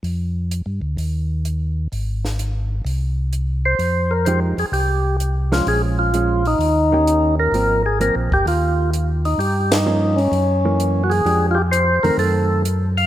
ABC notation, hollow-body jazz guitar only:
X:1
M:4/4
L:1/8
Q:"Swing" 1/4=129
K:Ablyd
V:1 name="Hollow-body jazz guitar"
z8 | z8 | z2 [F,A,EG] z4 [F,A,_D]- | [F,A,_D]2 [F,A,D] z2 [E,B,DG]3 |
[F,B,C] z [F,B,C] z4 z | z2 [F,B,_D] z2 [_F,B,]3 | [F,A,DG] z2 [E,=A,C]3 z2 |]